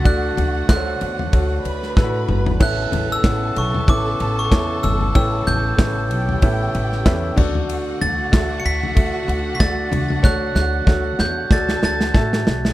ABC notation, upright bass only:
X:1
M:4/4
L:1/8
Q:"Swing 16ths" 1/4=94
K:D
V:1 name="Upright bass" clef=bass
D,, D,, D,, E,, D,, D,, A,, G,,, | A,,, A,,, A,,, B,,, A,,, A,,, E,, G,,, | A,,, A,,, A,,, B,,, A,,, A,,, E,, D,,- | D,, D,, D,, D,, D,, D,, D,, C,, |
D,, D,, D,, E,, D,, D,, A,, B,,, |]